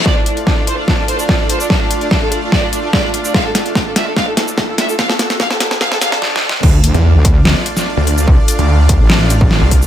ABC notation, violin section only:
X:1
M:4/4
L:1/16
Q:1/4=146
K:Dm
V:1 name="Violin section"
d D D z D D c D D D c D D D c D | D D z D D A D D d D D D d D D D | f A A z A A e A f A A z A A e A | f A A z f A A z f A f A z4 |
z16 | z16 |]